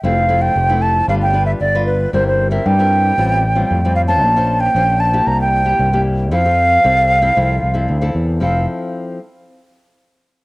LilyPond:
<<
  \new Staff \with { instrumentName = "Flute" } { \time 4/4 \key f \major \tempo 4 = 115 f''8. g''8. a''8 f''16 g''8 e''16 d''8 b'8 | c''16 c''8 e''16 g''2~ g''8 f''16 a''16~ | a''8. g''8. a''8 bes''16 g''4~ g''16 r8 | f''2.~ f''8 r8 |
f''8 r2. r8 | }
  \new Staff \with { instrumentName = "Nylon-string guitar" } { \time 4/4 \key f \major << { <a c' e'>8 <a c' e'>8 r16 <a c' e'>8. <d' f' b'>16 r16 <d' f' b'>8 r16 <d' f' b'>8. | <c' e' bes'>8. <c' e' bes'>8 <c' e' bes'>8. <g c' f'>8 r16 <g c' f'>8 <g c' f'>8 <des' f' c''>16~ | <des' f' c''>16 <des' f' c''>8. <des' f' c''>8. <bes e' g'>4 <bes e' g'>8 <bes e' g'>8. | <c' e' a'>16 <c' a'>8. <c' a'>8. <c' e' a'>16 <c' e' a'>8 r16 <c' e' a'>8 <c' e' a'>8. |
<f c' e' a'>8 r2. r8 | } \\ { f4 c4 g4 d4 | g4 g4 a,4 a,4 | bes4 f4 c4 g,4 | f4 c4 f4 c4 |
r1 | } >> }
  \new Staff \with { instrumentName = "Fingered electric bass" } { \clef bass \time 4/4 \key f \major f,,4 f,,4 g,,4 g,,4 | g,,4 g,4 a,,4 f,4 | bes,,4 bes,,4 c,4 c,4 | f,4 c,4 c,8 c,8 d,8 e,8 |
f,,8 r2. r8 | }
>>